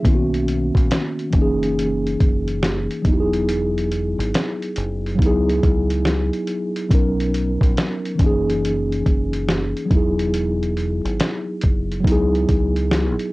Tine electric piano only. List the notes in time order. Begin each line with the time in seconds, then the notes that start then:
0.03 D#3 A#3 B3
0.07 C#4 E4
0.15 F#4
1.31 E3 A#3
1.36 C#4 D#4
1.42 G#4
3.02 F#3 B3
3.08 D#4 E4
3.13 G4
3.20 G#4
5.15 F#3 B3
5.21 D#4 E4
5.26 G#4
6.89 F#3 B3 C#4
6.93 D#4 A#4
8.15 E3 A#3
8.21 C#4 D#4
8.26 G#4
9.86 F#3 B3
9.91 D#4 E4
9.97 G#4
12.00 F#3 B3
12.06 D#4 E4
12.12 G#4